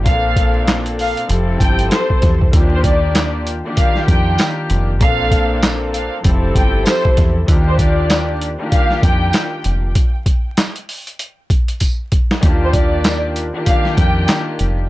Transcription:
0.04 1.13 A#1 loud
0.04 1.29 A#2 loud
0.04 1.29 A#3 medium
0.04 1.26 C4 medium
0.04 1.30 D4 medium
0.04 1.28 A4 loud
0.04 0.64 F5 loud
0.04 kick loud
0.04 closed hi-hat loud
0.36 kick medium
0.36 closed hi-hat medium
0.67 snare loud
0.67 clap medium
0.67 closed hi-hat medium
0.86 closed hi-hat medium
0.99 1.16 F5 medium
0.99 open hi-hat soft
1.17 closed hi-hat medium
1.27 1.58 F1 loud
1.27 2.44 F3 loud
1.27 2.44 C4 loud
1.27 2.45 E4 medium
1.27 2.45 G4 medium
1.27 2.45 A4 loud
1.27 closed hi-hat medium
1.60 1.88 G1 medium
1.60 1.89 G5 medium
1.60 kick loud
1.60 closed hi-hat medium
1.79 closed hi-hat medium
1.90 2.19 C5 medium
1.90 snare loud
1.90 clap medium
1.90 closed hi-hat loud
2.10 kick medium
2.22 2.51 E2 medium
2.22 kick medium
2.22 snare soft
2.22 closed hi-hat medium
2.41 kick medium
2.51 3.61 D#2 loud
2.51 3.53 D#3 loud
2.51 3.53 A#3 medium
2.51 3.54 D4 loud
2.51 3.54 F4 loud
2.51 3.54 G4 loud
2.51 kick loud
2.51 closed hi-hat loud
2.74 2.84 C5 medium
2.84 3.30 D5 medium
2.84 kick medium
2.84 closed hi-hat medium
3.15 snare loud
3.15 clap medium
3.15 closed hi-hat medium
3.15 tambourine medium
3.47 closed hi-hat medium
3.64 4.91 D#3 loud
3.64 4.92 A#3 loud
3.64 4.92 D4 medium
3.64 4.92 F4 loud
3.64 4.93 G4 loud
3.77 4.05 F5 medium
3.77 kick medium
3.77 closed hi-hat loud
3.96 snare soft
4.07 4.36 F2 medium
4.07 4.35 G5 medium
4.07 kick loud
4.07 closed hi-hat medium
4.38 snare loud
4.38 clap medium
4.38 closed hi-hat loud
4.38 tambourine medium
4.70 5.01 F1 medium
4.70 closed hi-hat medium
4.99 6.08 A#1 loud
4.99 6.24 A#2 loud
4.99 6.24 A#3 loud
4.99 6.21 C4 loud
4.99 6.25 D4 medium
4.99 6.23 A4 loud
4.99 5.59 F5 loud
4.99 kick loud
4.99 closed hi-hat loud
5.31 kick medium
5.31 closed hi-hat medium
5.62 snare loud
5.62 clap medium
5.62 closed hi-hat medium
5.62 tambourine medium
5.93 6.10 F5 medium
5.93 closed hi-hat medium
6.21 6.53 F1 loud
6.21 7.39 F3 loud
6.21 7.39 C4 loud
6.21 7.39 E4 loud
6.21 7.40 G4 loud
6.21 7.40 A4 loud
6.21 kick medium
6.21 closed hi-hat loud
6.55 6.83 G1 medium
6.55 6.83 G5 medium
6.55 kick loud
6.55 closed hi-hat medium
6.86 7.14 C5 medium
6.86 snare loud
6.86 clap loud
6.86 closed hi-hat loud
6.86 tambourine medium
7.05 kick medium
7.17 7.46 E2 medium
7.17 kick loud
7.17 snare soft
7.17 closed hi-hat medium
7.46 8.56 D#2 loud
7.46 8.48 D#3 loud
7.46 8.48 A#3 medium
7.46 8.49 D4 loud
7.46 8.49 F4 loud
7.46 8.49 G4 loud
7.46 kick loud
7.46 closed hi-hat loud
7.67 7.78 C5 medium
7.79 8.26 D5 medium
7.79 kick loud
7.79 closed hi-hat medium
8.10 snare loud
8.10 clap medium
8.10 closed hi-hat medium
8.10 tambourine medium
8.41 closed hi-hat medium
8.58 9.86 D#3 loud
8.58 9.86 A#3 loud
8.58 9.87 D4 loud
8.58 9.87 F4 medium
8.58 9.87 G4 loud
8.72 9.00 F5 medium
8.72 kick medium
8.72 closed hi-hat loud
8.90 snare soft
9.03 9.31 F2 medium
9.03 9.31 G5 medium
9.03 kick loud
9.03 closed hi-hat medium
9.33 snare loud
9.33 clap loud
9.33 closed hi-hat loud
9.33 tambourine medium
9.64 9.96 F1 medium
9.64 closed hi-hat medium
9.95 kick loud
9.95 closed hi-hat loud
10.26 kick medium
10.26 closed hi-hat medium
10.57 snare loud
10.57 clap medium
10.57 closed hi-hat medium
10.57 tambourine medium
10.76 closed hi-hat medium
10.89 open hi-hat soft
11.07 closed hi-hat medium
11.19 closed hi-hat loud
11.50 kick loud
11.50 closed hi-hat medium
11.68 closed hi-hat medium
11.80 kick medium
11.80 closed hi-hat loud
11.80 tambourine medium
12.12 kick medium
12.12 closed hi-hat medium
12.31 snare medium
12.41 13.50 D#2 loud
12.41 13.43 D#3 loud
12.41 13.43 A#3 medium
12.41 13.44 D4 loud
12.41 13.44 F4 loud
12.41 13.44 G4 loud
12.41 kick loud
12.41 closed hi-hat loud
12.64 12.74 C5 medium
12.73 13.20 D5 medium
12.73 kick medium
12.73 closed hi-hat medium
13.04 snare loud
13.04 clap loud
13.04 closed hi-hat medium
13.04 tambourine medium
13.36 closed hi-hat medium
13.53 14.81 D#3 loud
13.53 14.81 A#3 loud
13.53 14.82 D4 medium
13.53 14.82 F4 medium
13.53 14.82 G4 loud
13.66 13.95 F5 medium
13.66 kick medium
13.66 closed hi-hat loud
13.85 snare soft
13.96 14.25 F2 loud
13.96 14.25 G5 medium
13.96 kick loud
13.96 closed hi-hat medium
14.28 snare loud
14.28 clap medium
14.28 closed hi-hat loud
14.28 tambourine medium
14.59 14.89 F1 medium
14.59 closed hi-hat medium

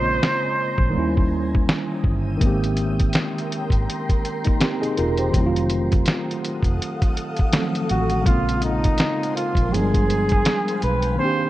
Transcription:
0.00 0.18 A#1 loud
0.00 0.90 C#3 medium
0.00 0.92 G#3 medium
0.00 0.93 A#3 medium
0.00 0.94 C4 medium
0.00 0.95 F4 medium
0.00 0.93 C5 medium
0.00 1.68 C5 loud
0.00 0.93 G#5 medium
0.00 0.91 A#5 medium
0.23 snare loud
0.78 0.93 A#1 medium
0.78 kick medium
0.90 2.35 D#3 medium
0.90 2.37 G3 medium
0.94 1.65 D#2 medium
0.94 2.38 A#3 medium
0.94 2.39 C#4 medium
0.94 2.39 E5 medium
0.94 5.30 G5 medium
0.94 2.39 D#6 medium
0.99 2.40 E4 medium
1.17 kick medium
1.55 kick medium
1.69 snare loud
2.04 2.38 G1 medium
2.04 kick medium
2.37 5.28 D#3 medium
2.37 5.29 G#3 medium
2.37 5.31 A#4 medium
2.37 5.30 A#5 medium
2.37 5.31 C6 medium
2.37 kick loud
2.37 closed hi-hat medium
2.42 3.10 G#1 loud
2.42 4.21 A#3 medium
2.42 4.22 C4 medium
2.46 4.23 G4 medium
2.64 closed hi-hat soft
2.77 closed hi-hat medium
3.00 kick medium
3.00 closed hi-hat medium
3.13 snare loud
3.13 closed hi-hat medium
3.38 closed hi-hat soft
3.52 closed hi-hat medium
3.70 3.85 G#1 medium
3.70 kick medium
3.70 closed hi-hat soft
3.90 closed hi-hat medium
4.09 kick medium
4.09 closed hi-hat soft
4.25 closed hi-hat medium
4.44 4.60 A#3 soft
4.44 4.60 D#4 medium
4.44 kick medium
4.44 closed hi-hat soft
4.60 4.80 C4 medium
4.60 4.80 G4 medium
4.60 snare loud
4.60 closed hi-hat medium
4.81 4.96 D#4 medium
4.81 4.96 G#4 medium
4.81 closed hi-hat soft
4.97 5.31 E1 medium
4.97 5.18 F4 soft
4.97 5.17 A#4 medium
4.97 closed hi-hat medium
5.17 5.53 G4 medium
5.17 5.53 C5 medium
5.17 closed hi-hat soft
5.31 6.03 F1 medium
5.31 7.48 D#3 medium
5.31 7.49 F#3 medium
5.31 8.23 A4 medium
5.31 8.23 F5 medium
5.31 8.23 F#5 medium
5.31 8.23 D#6 medium
5.31 kick loud
5.31 closed hi-hat medium
5.35 7.50 A3 medium
5.35 7.51 C4 medium
5.40 5.44 E4 medium
5.46 7.56 F4 medium
5.56 closed hi-hat medium
5.70 closed hi-hat medium
5.92 kick medium
5.92 closed hi-hat soft
6.06 snare medium
6.06 closed hi-hat medium
6.31 closed hi-hat soft
6.45 closed hi-hat medium
6.63 6.78 F1 medium
6.63 kick medium
6.63 closed hi-hat soft
6.82 closed hi-hat medium
7.02 kick medium
7.02 closed hi-hat soft
7.17 closed hi-hat medium
7.37 kick medium
7.37 closed hi-hat soft
7.52 8.26 D#3 medium
7.52 8.26 F#3 medium
7.52 8.27 A3 medium
7.52 8.27 C4 medium
7.52 snare loud
7.52 closed hi-hat medium
7.57 8.28 F3 medium
7.75 closed hi-hat soft
7.89 8.24 A1 medium
7.89 8.24 F#4 medium
7.89 closed hi-hat medium
8.10 closed hi-hat soft
8.21 9.67 C#3 medium
8.21 9.68 G#3 medium
8.26 8.96 A#1 medium
8.26 9.70 A#3 medium
8.26 9.71 C4 medium
8.26 8.60 F4 medium
8.26 9.71 A#4 medium
8.26 9.71 C5 medium
8.26 9.71 G#5 medium
8.26 9.71 C6 medium
8.26 kick loud
8.26 closed hi-hat medium
8.31 9.72 F4 medium
8.49 closed hi-hat medium
8.62 9.32 D#4 medium
8.62 closed hi-hat medium
8.84 kick medium
8.84 closed hi-hat medium
8.98 snare loud
8.98 closed hi-hat medium
9.23 closed hi-hat soft
9.36 9.74 F4 medium
9.36 closed hi-hat medium
9.55 9.70 A#1 medium
9.55 kick medium
9.55 closed hi-hat soft
9.69 11.14 F3 medium
9.69 11.15 G#3 medium
9.69 11.17 G#4 medium
9.69 10.82 G#4 loud
9.69 11.17 F5 medium
9.69 11.17 G5 medium
9.69 11.17 B5 medium
9.73 10.42 G1 medium
9.73 11.17 B3 medium
9.73 11.18 D4 medium
9.73 closed hi-hat medium
9.78 11.19 G3 medium
9.94 kick medium
9.94 closed hi-hat soft
10.10 closed hi-hat medium
10.29 kick medium
10.29 closed hi-hat soft
10.45 snare loud
10.45 closed hi-hat medium
10.68 closed hi-hat soft
10.82 11.16 B1 medium
10.82 11.17 B4 loud
10.82 closed hi-hat medium
11.02 closed hi-hat soft
11.15 11.50 D#3 medium
11.15 11.50 A#3 medium
11.15 11.50 C5 loud
11.20 11.50 A#3 medium
11.20 11.50 C4 medium
11.20 11.50 D4 medium
11.20 11.50 C5 medium
11.20 11.50 D5 medium
11.20 11.50 C6 medium
11.25 11.50 G4 medium

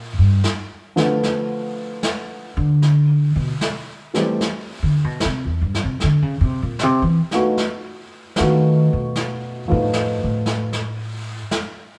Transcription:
0.00 0.14 A#2 medium
0.18 0.43 G2 medium
0.44 snare medium
0.96 1.97 D3 medium
0.96 1.97 F3 medium
0.96 1.97 A3 soft
0.96 1.97 B3 medium
0.96 1.98 F4 medium
0.96 snare soft
1.23 brush sweep soft
1.23 snare soft
2.03 snare medium
2.57 3.31 D3 medium
2.82 brush sweep soft
2.82 snare soft
3.36 3.51 B2 medium
3.61 snare medium
4.14 4.38 E3 soft
4.14 4.38 G3 soft
4.14 4.39 A3 soft
4.14 4.39 C4 soft
4.14 4.39 G4 medium
4.14 snare soft
4.41 brush sweep soft
4.41 snare soft
4.83 5.04 D3 medium
5.04 5.19 B2 medium
5.20 snare medium
5.25 5.45 C3 medium
5.45 5.61 E2 medium
5.62 5.80 G2 medium
5.74 snare soft
5.83 5.98 C3 medium
6.00 6.22 D3 medium
6.00 brush sweep soft
6.00 snare soft
6.22 6.40 C#3 medium
6.41 6.59 C3 medium
6.63 6.83 A#2 medium
6.79 7.01 C3 medium
6.79 snare medium
7.02 7.19 E3 medium
7.31 7.57 A3 soft
7.31 7.57 B3 soft
7.31 7.57 D#4 soft
7.31 7.56 F4 medium
7.31 7.57 F#4 medium
7.31 snare soft
7.57 brush sweep soft
7.57 snare soft
8.36 8.87 D#3 medium
8.36 8.85 A3 soft
8.36 8.85 B3 soft
8.36 8.84 F4 medium
8.36 snare medium
8.40 8.85 D#4 soft
8.40 8.86 F#4 medium
8.93 9.66 B2 medium
9.16 brush sweep soft
9.16 snare soft
9.68 10.19 A2 medium
9.68 9.92 F3 medium
9.68 9.92 A3 soft
9.68 9.92 B3 soft
9.68 9.93 D#4 soft
9.68 9.93 F4 medium
9.93 snare medium
10.23 11.40 A2 medium
10.46 snare soft
10.73 brush sweep soft
10.73 snare soft
11.51 snare medium

